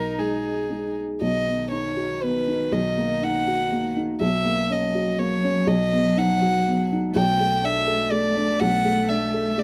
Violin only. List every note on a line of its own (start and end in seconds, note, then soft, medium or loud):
0.00 0.20 A#4 medium
0.19 0.97 G#4 soft
1.22 1.69 D#5 medium
1.72 2.24 C#5 medium
2.23 2.74 B4 medium
2.73 3.25 D#5 medium
3.24 3.97 F#5 medium
4.21 4.73 E5 medium
4.72 5.21 D#5 medium
5.19 5.69 C#5 medium
5.68 6.20 D#5 medium
6.19 6.92 F#5 medium
7.16 7.66 G5 loud
7.65 8.13 E5 medium
8.12 8.62 D5 medium
8.60 9.10 F#5 loud
9.09 9.61 E5 medium
9.59 9.63 D5 medium